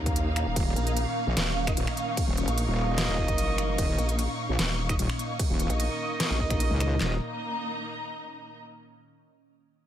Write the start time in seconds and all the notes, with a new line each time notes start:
Already playing: D#2 A#2 D#3 A#3 C#4 D#4 A#4 F5 A#5
0.06 kick, closed hi-hat
0.16 closed hi-hat
0.36 finger snap, closed hi-hat
0.46 D#1
0.56 D#1 D#5, kick, closed hi-hat, crash
0.76 A#1, closed hi-hat
0.87 D#4 A#4 D#5, closed hi-hat
0.97 closed hi-hat, crash
1.07 C#6
1.27 A#1
1.37 D#1, snare, closed hi-hat, crash
1.67 D#4 A#4 D#5, finger snap, kick, closed hi-hat
1.77 D#1, closed hi-hat, crash
1.87 finger snap
1.97 closed hi-hat
2.17 kick, closed hi-hat, crash
2.28 D#1
2.37 closed hi-hat
2.48 A#1 D#4 A#4 D#5, closed hi-hat
2.58 closed hi-hat, crash
2.68 D#1
2.98 snare, closed hi-hat, crash
3.08 D#1
3.18 kick
3.28 F#1, kick, closed hi-hat
3.38 closed hi-hat, crash
3.58 finger snap, closed hi-hat
3.78 D#1, kick, closed hi-hat, crash
3.98 A#1, closed hi-hat
4.09 D#4 A#4 D#5, closed hi-hat
4.19 closed hi-hat, crash
4.49 A#1
4.59 D#1, snare, closed hi-hat, crash
4.89 D#4 A#4 D#5, finger snap, kick, closed hi-hat
4.99 D#1, closed hi-hat, crash
5.10 finger snap
5.19 closed hi-hat
5.39 kick, closed hi-hat, crash
5.50 D#1
5.60 closed hi-hat
5.70 A#1 D#4 A#4 D#5, closed hi-hat
5.80 closed hi-hat, crash
6.20 snare, closed hi-hat, crash
6.30 A#1
6.40 D#4 A#4 D#5, kick
6.50 finger snap, kick, closed hi-hat
6.60 closed hi-hat, crash
6.71 C#2
6.80 finger snap, closed hi-hat
7.00 D#1 A#3 D#4 A#4 D#5, snare, clap
7.07 D#4
7.13 D#5
7.19 A#5